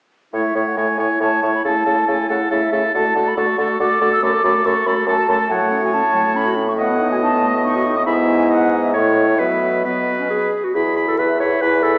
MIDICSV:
0, 0, Header, 1, 6, 480
1, 0, Start_track
1, 0, Key_signature, 3, "major"
1, 0, Tempo, 434468
1, 375, Time_signature, 3, 2, 24, 8
1, 3248, Tempo, 426439
1, 6125, Key_signature, 4, "major"
1, 9008, Tempo, 447427
1, 11888, Tempo, 434153
1, 13260, End_track
2, 0, Start_track
2, 0, Title_t, "Flute"
2, 0, Program_c, 0, 73
2, 370, Note_on_c, 0, 76, 51
2, 741, Note_on_c, 0, 78, 45
2, 758, Note_off_c, 0, 76, 0
2, 850, Note_on_c, 0, 80, 58
2, 867, Note_off_c, 0, 78, 0
2, 1325, Note_off_c, 0, 80, 0
2, 1332, Note_on_c, 0, 81, 56
2, 1690, Note_off_c, 0, 81, 0
2, 1701, Note_on_c, 0, 83, 51
2, 1818, Note_off_c, 0, 83, 0
2, 1823, Note_on_c, 0, 81, 53
2, 2291, Note_on_c, 0, 80, 59
2, 2308, Note_off_c, 0, 81, 0
2, 2540, Note_on_c, 0, 78, 52
2, 2557, Note_off_c, 0, 80, 0
2, 2775, Note_on_c, 0, 76, 56
2, 2791, Note_off_c, 0, 78, 0
2, 3244, Note_off_c, 0, 76, 0
2, 3251, Note_on_c, 0, 81, 54
2, 3625, Note_on_c, 0, 83, 49
2, 3642, Note_off_c, 0, 81, 0
2, 3743, Note_on_c, 0, 85, 65
2, 3760, Note_off_c, 0, 83, 0
2, 4204, Note_off_c, 0, 85, 0
2, 4210, Note_on_c, 0, 86, 67
2, 4563, Note_off_c, 0, 86, 0
2, 4575, Note_on_c, 0, 88, 55
2, 4692, Note_on_c, 0, 86, 65
2, 4709, Note_off_c, 0, 88, 0
2, 5172, Note_on_c, 0, 85, 70
2, 5189, Note_off_c, 0, 86, 0
2, 5409, Note_on_c, 0, 83, 62
2, 5426, Note_off_c, 0, 85, 0
2, 5647, Note_off_c, 0, 83, 0
2, 5660, Note_on_c, 0, 81, 71
2, 6131, Note_on_c, 0, 78, 67
2, 6148, Note_off_c, 0, 81, 0
2, 6487, Note_off_c, 0, 78, 0
2, 6510, Note_on_c, 0, 80, 61
2, 6616, Note_on_c, 0, 81, 72
2, 6632, Note_off_c, 0, 80, 0
2, 7092, Note_on_c, 0, 83, 76
2, 7109, Note_off_c, 0, 81, 0
2, 7448, Note_off_c, 0, 83, 0
2, 7454, Note_on_c, 0, 85, 66
2, 7506, Note_off_c, 0, 85, 0
2, 7577, Note_on_c, 0, 78, 67
2, 7927, Note_off_c, 0, 78, 0
2, 7944, Note_on_c, 0, 80, 65
2, 7994, Note_off_c, 0, 80, 0
2, 8061, Note_on_c, 0, 81, 75
2, 8325, Note_off_c, 0, 81, 0
2, 8541, Note_on_c, 0, 85, 78
2, 8904, Note_on_c, 0, 87, 58
2, 8921, Note_off_c, 0, 85, 0
2, 8998, Note_off_c, 0, 87, 0
2, 9005, Note_on_c, 0, 83, 74
2, 9070, Note_off_c, 0, 83, 0
2, 9239, Note_on_c, 0, 80, 61
2, 9473, Note_off_c, 0, 80, 0
2, 9483, Note_on_c, 0, 78, 71
2, 9830, Note_off_c, 0, 78, 0
2, 9839, Note_on_c, 0, 76, 54
2, 9954, Note_off_c, 0, 76, 0
2, 9961, Note_on_c, 0, 75, 58
2, 10312, Note_off_c, 0, 75, 0
2, 10317, Note_on_c, 0, 73, 55
2, 10438, Note_on_c, 0, 76, 66
2, 10454, Note_off_c, 0, 73, 0
2, 10931, Note_on_c, 0, 75, 54
2, 10948, Note_off_c, 0, 76, 0
2, 11651, Note_off_c, 0, 75, 0
2, 12367, Note_on_c, 0, 76, 45
2, 12850, Note_on_c, 0, 80, 46
2, 12867, Note_off_c, 0, 76, 0
2, 13260, Note_off_c, 0, 80, 0
2, 13260, End_track
3, 0, Start_track
3, 0, Title_t, "Oboe"
3, 0, Program_c, 1, 68
3, 376, Note_on_c, 1, 73, 41
3, 611, Note_off_c, 1, 73, 0
3, 618, Note_on_c, 1, 73, 36
3, 854, Note_off_c, 1, 73, 0
3, 861, Note_on_c, 1, 73, 35
3, 1091, Note_off_c, 1, 73, 0
3, 1097, Note_on_c, 1, 73, 36
3, 1333, Note_off_c, 1, 73, 0
3, 1340, Note_on_c, 1, 73, 40
3, 1568, Note_off_c, 1, 73, 0
3, 1574, Note_on_c, 1, 73, 35
3, 1813, Note_off_c, 1, 73, 0
3, 1818, Note_on_c, 1, 69, 40
3, 2042, Note_off_c, 1, 69, 0
3, 2048, Note_on_c, 1, 69, 35
3, 2276, Note_off_c, 1, 69, 0
3, 2283, Note_on_c, 1, 69, 37
3, 2523, Note_off_c, 1, 69, 0
3, 2529, Note_on_c, 1, 69, 37
3, 2765, Note_off_c, 1, 69, 0
3, 2772, Note_on_c, 1, 69, 39
3, 3003, Note_off_c, 1, 69, 0
3, 3009, Note_on_c, 1, 69, 37
3, 3243, Note_off_c, 1, 69, 0
3, 3254, Note_on_c, 1, 69, 41
3, 3489, Note_off_c, 1, 69, 0
3, 3494, Note_on_c, 1, 69, 38
3, 3717, Note_off_c, 1, 69, 0
3, 3723, Note_on_c, 1, 69, 37
3, 3961, Note_off_c, 1, 69, 0
3, 3973, Note_on_c, 1, 69, 35
3, 4206, Note_off_c, 1, 69, 0
3, 4214, Note_on_c, 1, 69, 39
3, 4447, Note_off_c, 1, 69, 0
3, 4453, Note_on_c, 1, 69, 42
3, 4688, Note_off_c, 1, 69, 0
3, 4696, Note_on_c, 1, 69, 47
3, 4929, Note_off_c, 1, 69, 0
3, 4944, Note_on_c, 1, 69, 40
3, 5172, Note_off_c, 1, 69, 0
3, 5179, Note_on_c, 1, 69, 42
3, 5408, Note_off_c, 1, 69, 0
3, 5415, Note_on_c, 1, 69, 40
3, 5642, Note_off_c, 1, 69, 0
3, 5649, Note_on_c, 1, 69, 46
3, 5882, Note_off_c, 1, 69, 0
3, 5897, Note_on_c, 1, 69, 42
3, 6121, Note_off_c, 1, 69, 0
3, 6128, Note_on_c, 1, 73, 47
3, 7377, Note_off_c, 1, 73, 0
3, 7568, Note_on_c, 1, 75, 53
3, 8981, Note_off_c, 1, 75, 0
3, 9011, Note_on_c, 1, 76, 48
3, 9479, Note_on_c, 1, 75, 47
3, 9495, Note_off_c, 1, 76, 0
3, 9946, Note_off_c, 1, 75, 0
3, 9952, Note_on_c, 1, 73, 47
3, 10435, Note_on_c, 1, 71, 45
3, 10451, Note_off_c, 1, 73, 0
3, 10927, Note_off_c, 1, 71, 0
3, 10932, Note_on_c, 1, 71, 42
3, 11637, Note_off_c, 1, 71, 0
3, 11894, Note_on_c, 1, 83, 38
3, 12126, Note_off_c, 1, 83, 0
3, 12133, Note_on_c, 1, 83, 35
3, 12366, Note_off_c, 1, 83, 0
3, 12373, Note_on_c, 1, 83, 33
3, 12609, Note_off_c, 1, 83, 0
3, 12623, Note_on_c, 1, 83, 33
3, 12852, Note_off_c, 1, 83, 0
3, 12857, Note_on_c, 1, 83, 36
3, 13087, Note_off_c, 1, 83, 0
3, 13098, Note_on_c, 1, 83, 36
3, 13260, Note_off_c, 1, 83, 0
3, 13260, End_track
4, 0, Start_track
4, 0, Title_t, "Clarinet"
4, 0, Program_c, 2, 71
4, 365, Note_on_c, 2, 64, 43
4, 594, Note_off_c, 2, 64, 0
4, 601, Note_on_c, 2, 64, 35
4, 845, Note_off_c, 2, 64, 0
4, 852, Note_on_c, 2, 64, 36
4, 1085, Note_off_c, 2, 64, 0
4, 1092, Note_on_c, 2, 64, 34
4, 1330, Note_off_c, 2, 64, 0
4, 1337, Note_on_c, 2, 64, 39
4, 1575, Note_off_c, 2, 64, 0
4, 1589, Note_on_c, 2, 64, 35
4, 1815, Note_off_c, 2, 64, 0
4, 1821, Note_on_c, 2, 64, 42
4, 2055, Note_off_c, 2, 64, 0
4, 2064, Note_on_c, 2, 64, 35
4, 2286, Note_off_c, 2, 64, 0
4, 2293, Note_on_c, 2, 64, 39
4, 2528, Note_off_c, 2, 64, 0
4, 2542, Note_on_c, 2, 64, 39
4, 2757, Note_off_c, 2, 64, 0
4, 2764, Note_on_c, 2, 64, 39
4, 3001, Note_off_c, 2, 64, 0
4, 3008, Note_on_c, 2, 64, 39
4, 3243, Note_off_c, 2, 64, 0
4, 3248, Note_on_c, 2, 66, 43
4, 3486, Note_off_c, 2, 66, 0
4, 3492, Note_on_c, 2, 66, 39
4, 3727, Note_off_c, 2, 66, 0
4, 3738, Note_on_c, 2, 66, 39
4, 3969, Note_off_c, 2, 66, 0
4, 3981, Note_on_c, 2, 66, 40
4, 4210, Note_off_c, 2, 66, 0
4, 4216, Note_on_c, 2, 66, 44
4, 4443, Note_off_c, 2, 66, 0
4, 4450, Note_on_c, 2, 66, 39
4, 4677, Note_off_c, 2, 66, 0
4, 4683, Note_on_c, 2, 66, 46
4, 4912, Note_off_c, 2, 66, 0
4, 4918, Note_on_c, 2, 66, 40
4, 5158, Note_off_c, 2, 66, 0
4, 5166, Note_on_c, 2, 66, 45
4, 5401, Note_off_c, 2, 66, 0
4, 5407, Note_on_c, 2, 66, 43
4, 5641, Note_off_c, 2, 66, 0
4, 5655, Note_on_c, 2, 66, 47
4, 5885, Note_off_c, 2, 66, 0
4, 5891, Note_on_c, 2, 66, 43
4, 6123, Note_off_c, 2, 66, 0
4, 6130, Note_on_c, 2, 54, 49
4, 6255, Note_on_c, 2, 57, 43
4, 6272, Note_off_c, 2, 54, 0
4, 6362, Note_on_c, 2, 61, 45
4, 6379, Note_off_c, 2, 57, 0
4, 6484, Note_on_c, 2, 66, 45
4, 6501, Note_off_c, 2, 61, 0
4, 6609, Note_on_c, 2, 61, 48
4, 6626, Note_off_c, 2, 66, 0
4, 6722, Note_on_c, 2, 57, 44
4, 6739, Note_off_c, 2, 61, 0
4, 6841, Note_on_c, 2, 54, 47
4, 6858, Note_off_c, 2, 57, 0
4, 6965, Note_on_c, 2, 57, 46
4, 6982, Note_off_c, 2, 54, 0
4, 7086, Note_on_c, 2, 61, 50
4, 7103, Note_off_c, 2, 57, 0
4, 7208, Note_on_c, 2, 66, 48
4, 7225, Note_off_c, 2, 61, 0
4, 7322, Note_on_c, 2, 61, 50
4, 7339, Note_off_c, 2, 66, 0
4, 7456, Note_on_c, 2, 57, 43
4, 7473, Note_off_c, 2, 61, 0
4, 7571, Note_off_c, 2, 57, 0
4, 7576, Note_on_c, 2, 57, 52
4, 7708, Note_on_c, 2, 59, 46
4, 7725, Note_off_c, 2, 57, 0
4, 7822, Note_on_c, 2, 63, 46
4, 7839, Note_off_c, 2, 59, 0
4, 7951, Note_on_c, 2, 66, 47
4, 7968, Note_off_c, 2, 63, 0
4, 8070, Note_on_c, 2, 63, 53
4, 8087, Note_off_c, 2, 66, 0
4, 8190, Note_on_c, 2, 59, 47
4, 8207, Note_off_c, 2, 63, 0
4, 8308, Note_on_c, 2, 57, 49
4, 8324, Note_off_c, 2, 59, 0
4, 8427, Note_on_c, 2, 59, 49
4, 8444, Note_off_c, 2, 57, 0
4, 8545, Note_on_c, 2, 63, 50
4, 8562, Note_off_c, 2, 59, 0
4, 8666, Note_on_c, 2, 66, 47
4, 8683, Note_off_c, 2, 63, 0
4, 8787, Note_on_c, 2, 63, 51
4, 8804, Note_off_c, 2, 66, 0
4, 8907, Note_on_c, 2, 59, 44
4, 8924, Note_off_c, 2, 63, 0
4, 9012, Note_off_c, 2, 59, 0
4, 9019, Note_on_c, 2, 64, 53
4, 9782, Note_off_c, 2, 64, 0
4, 9964, Note_on_c, 2, 64, 49
4, 10441, Note_on_c, 2, 59, 42
4, 10457, Note_off_c, 2, 64, 0
4, 10923, Note_off_c, 2, 59, 0
4, 10930, Note_on_c, 2, 59, 48
4, 11301, Note_on_c, 2, 61, 45
4, 11317, Note_off_c, 2, 59, 0
4, 11404, Note_off_c, 2, 61, 0
4, 11410, Note_on_c, 2, 68, 62
4, 11777, Note_on_c, 2, 66, 47
4, 11793, Note_off_c, 2, 68, 0
4, 11891, Note_on_c, 2, 68, 54
4, 11908, Note_off_c, 2, 66, 0
4, 12253, Note_off_c, 2, 68, 0
4, 12258, Note_on_c, 2, 69, 47
4, 12379, Note_on_c, 2, 71, 54
4, 12395, Note_off_c, 2, 69, 0
4, 12604, Note_off_c, 2, 71, 0
4, 12611, Note_on_c, 2, 73, 51
4, 12854, Note_on_c, 2, 71, 57
4, 12870, Note_off_c, 2, 73, 0
4, 13087, Note_on_c, 2, 69, 52
4, 13103, Note_off_c, 2, 71, 0
4, 13260, Note_off_c, 2, 69, 0
4, 13260, End_track
5, 0, Start_track
5, 0, Title_t, "French horn"
5, 0, Program_c, 3, 60
5, 372, Note_on_c, 3, 57, 41
5, 599, Note_off_c, 3, 57, 0
5, 605, Note_on_c, 3, 57, 39
5, 847, Note_off_c, 3, 57, 0
5, 858, Note_on_c, 3, 57, 39
5, 1093, Note_off_c, 3, 57, 0
5, 1103, Note_on_c, 3, 57, 33
5, 1332, Note_off_c, 3, 57, 0
5, 1339, Note_on_c, 3, 57, 36
5, 1576, Note_off_c, 3, 57, 0
5, 1583, Note_on_c, 3, 57, 36
5, 1817, Note_off_c, 3, 57, 0
5, 1826, Note_on_c, 3, 57, 40
5, 2051, Note_off_c, 3, 57, 0
5, 2058, Note_on_c, 3, 57, 39
5, 2292, Note_off_c, 3, 57, 0
5, 2296, Note_on_c, 3, 57, 41
5, 2530, Note_off_c, 3, 57, 0
5, 2538, Note_on_c, 3, 57, 34
5, 2765, Note_off_c, 3, 57, 0
5, 2772, Note_on_c, 3, 57, 37
5, 2997, Note_off_c, 3, 57, 0
5, 3004, Note_on_c, 3, 57, 39
5, 3240, Note_off_c, 3, 57, 0
5, 3247, Note_on_c, 3, 57, 41
5, 3485, Note_off_c, 3, 57, 0
5, 3491, Note_on_c, 3, 57, 37
5, 3727, Note_off_c, 3, 57, 0
5, 3736, Note_on_c, 3, 57, 38
5, 3968, Note_off_c, 3, 57, 0
5, 3975, Note_on_c, 3, 57, 37
5, 4207, Note_off_c, 3, 57, 0
5, 4216, Note_on_c, 3, 57, 42
5, 4448, Note_off_c, 3, 57, 0
5, 4456, Note_on_c, 3, 57, 42
5, 4689, Note_off_c, 3, 57, 0
5, 4695, Note_on_c, 3, 57, 45
5, 4921, Note_off_c, 3, 57, 0
5, 4928, Note_on_c, 3, 57, 42
5, 5163, Note_off_c, 3, 57, 0
5, 5174, Note_on_c, 3, 57, 45
5, 5405, Note_off_c, 3, 57, 0
5, 5413, Note_on_c, 3, 57, 40
5, 5639, Note_off_c, 3, 57, 0
5, 5646, Note_on_c, 3, 57, 43
5, 5881, Note_off_c, 3, 57, 0
5, 5895, Note_on_c, 3, 57, 42
5, 6125, Note_off_c, 3, 57, 0
5, 6137, Note_on_c, 3, 57, 49
5, 7525, Note_off_c, 3, 57, 0
5, 7573, Note_on_c, 3, 59, 54
5, 8819, Note_off_c, 3, 59, 0
5, 9010, Note_on_c, 3, 59, 52
5, 9959, Note_on_c, 3, 57, 46
5, 9975, Note_off_c, 3, 59, 0
5, 10429, Note_off_c, 3, 57, 0
5, 10436, Note_on_c, 3, 54, 47
5, 10917, Note_off_c, 3, 54, 0
5, 10930, Note_on_c, 3, 54, 46
5, 11636, Note_off_c, 3, 54, 0
5, 11891, Note_on_c, 3, 64, 38
5, 12128, Note_off_c, 3, 64, 0
5, 12136, Note_on_c, 3, 64, 34
5, 12371, Note_off_c, 3, 64, 0
5, 12378, Note_on_c, 3, 64, 38
5, 12605, Note_off_c, 3, 64, 0
5, 12611, Note_on_c, 3, 64, 33
5, 12847, Note_off_c, 3, 64, 0
5, 12856, Note_on_c, 3, 64, 38
5, 13084, Note_off_c, 3, 64, 0
5, 13090, Note_on_c, 3, 64, 38
5, 13260, Note_off_c, 3, 64, 0
5, 13260, End_track
6, 0, Start_track
6, 0, Title_t, "Bassoon"
6, 0, Program_c, 4, 70
6, 363, Note_on_c, 4, 45, 41
6, 475, Note_off_c, 4, 45, 0
6, 601, Note_on_c, 4, 45, 39
6, 713, Note_off_c, 4, 45, 0
6, 845, Note_on_c, 4, 45, 41
6, 956, Note_off_c, 4, 45, 0
6, 1076, Note_on_c, 4, 45, 37
6, 1189, Note_off_c, 4, 45, 0
6, 1325, Note_on_c, 4, 45, 41
6, 1437, Note_off_c, 4, 45, 0
6, 1572, Note_on_c, 4, 45, 40
6, 1682, Note_off_c, 4, 45, 0
6, 1819, Note_on_c, 4, 49, 43
6, 1927, Note_off_c, 4, 49, 0
6, 2057, Note_on_c, 4, 49, 41
6, 2165, Note_off_c, 4, 49, 0
6, 2296, Note_on_c, 4, 49, 41
6, 2403, Note_off_c, 4, 49, 0
6, 2538, Note_on_c, 4, 49, 41
6, 2644, Note_off_c, 4, 49, 0
6, 2776, Note_on_c, 4, 49, 42
6, 2882, Note_off_c, 4, 49, 0
6, 3008, Note_on_c, 4, 49, 44
6, 3116, Note_off_c, 4, 49, 0
6, 3257, Note_on_c, 4, 50, 43
6, 3364, Note_off_c, 4, 50, 0
6, 3490, Note_on_c, 4, 50, 46
6, 3598, Note_off_c, 4, 50, 0
6, 3732, Note_on_c, 4, 50, 45
6, 3839, Note_off_c, 4, 50, 0
6, 3968, Note_on_c, 4, 50, 42
6, 4076, Note_off_c, 4, 50, 0
6, 4211, Note_on_c, 4, 50, 46
6, 4319, Note_off_c, 4, 50, 0
6, 4455, Note_on_c, 4, 50, 44
6, 4562, Note_off_c, 4, 50, 0
6, 4692, Note_on_c, 4, 42, 48
6, 4800, Note_off_c, 4, 42, 0
6, 4939, Note_on_c, 4, 42, 49
6, 5044, Note_off_c, 4, 42, 0
6, 5174, Note_on_c, 4, 42, 49
6, 5280, Note_off_c, 4, 42, 0
6, 5407, Note_on_c, 4, 42, 45
6, 5515, Note_off_c, 4, 42, 0
6, 5637, Note_on_c, 4, 42, 50
6, 5747, Note_off_c, 4, 42, 0
6, 5883, Note_on_c, 4, 42, 49
6, 5991, Note_off_c, 4, 42, 0
6, 6124, Note_on_c, 4, 45, 50
6, 8962, Note_off_c, 4, 45, 0
6, 9014, Note_on_c, 4, 44, 55
6, 9963, Note_on_c, 4, 45, 48
6, 9979, Note_off_c, 4, 44, 0
6, 10443, Note_on_c, 4, 47, 45
6, 10459, Note_off_c, 4, 45, 0
6, 11652, Note_off_c, 4, 47, 0
6, 11895, Note_on_c, 4, 40, 40
6, 12319, Note_off_c, 4, 40, 0
6, 12371, Note_on_c, 4, 40, 42
6, 12795, Note_off_c, 4, 40, 0
6, 12853, Note_on_c, 4, 40, 46
6, 13260, Note_off_c, 4, 40, 0
6, 13260, End_track
0, 0, End_of_file